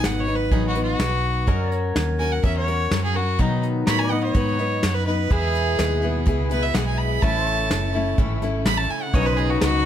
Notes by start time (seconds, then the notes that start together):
Already playing: B2 D#3 F#3 B3 D#4 B4 D#5
0.04 G#1 F#5, snare, closed hi-hat
0.20 C#5
0.27 F#3 B3 D#4 B4
0.36 B4
0.51 A1 B2 D#3 F#3 B3 D#4 G#4 B4, kick, closed hi-hat
0.68 F#4
0.75 F#3 B3 D#4 B4, closed hi-hat
0.83 F#4
0.99 B1 F#3 B3 D#4 B4, snare, closed hi-hat
1.47 F#2 F#3 C#4 F#4 A#4 D#5, kick, closed hi-hat
1.72 C#5, closed hi-hat
1.96 D#2, snare, closed hi-hat
2.19 C#4 F#4 A#4 G#5
2.32 F#5
2.43 E2 F#3 C#4 F#4 A#4 E5, kick, closed hi-hat
2.56 C#5
2.67 C#4 F#4 A#4, closed hi-hat
2.91 F#2 F#3 C#4 F#4 A#4, snare, closed hi-hat
3.04 G#4
3.14 C#4 F#4 A#4
3.39 B2 D#3 F#3 B3 D#4 B4, kick, closed hi-hat
3.63 closed hi-hat
3.87 A2 A#4 C#5 B5, snare, closed hi-hat
3.99 G#5
4.07 B4 F#5
4.11 F#3 B3 D#4 D#5
4.23 C#5
4.34 G#2 B2 D#3 F#3 B3 D#4 B4, kick, closed hi-hat
4.59 F#3 B3 D#4 B4, closed hi-hat
4.82 F#2 F#3 B3 D#4 B4, snare, closed hi-hat
4.95 B4
5.06 F#3 B3 D#4 B4
5.30 E2 B2 E3 G#3 B3 E4 G#4 B4 E5, kick, closed hi-hat
5.55 closed hi-hat
5.79 D#2, snare, closed hi-hat
6.02 B3 E4 G#4
6.26 C#2 E3 G#3 B3 E4 G#4, kick, closed hi-hat
6.50 B3 E4 G#4 B4, closed hi-hat
6.63 E5
6.74 B1 G#3 B3 E4 G#4 F#5, snare, closed hi-hat
6.86 G#5
6.98 B5
7.22 A1 A2 C#3 E3 A3 C#4 E4 A4 B4 E5 A5, kick, closed hi-hat
7.46 C#5, closed hi-hat
7.71 F#1, snare, closed hi-hat
7.94 A3 C#4 E4 A4
8.18 G#1 A2 E3 A3 C#4 E4 A4, kick, closed hi-hat
8.42 A3 C#4 E4 A4, closed hi-hat
8.66 A1 A3 C#4 E4 A4 B5, snare, closed hi-hat
8.78 A5
8.90 G#5, muted fingered electric bass stroke
9.03 F#5
9.13 B1 B2 D#3 F#3 B3 C#4 D#4 B4 C#5 D#5, kick, closed hi-hat
9.26 B4
9.37 G#4 B4, closed hi-hat
9.50 F#4
9.61 C#2 F#4, snare, closed hi-hat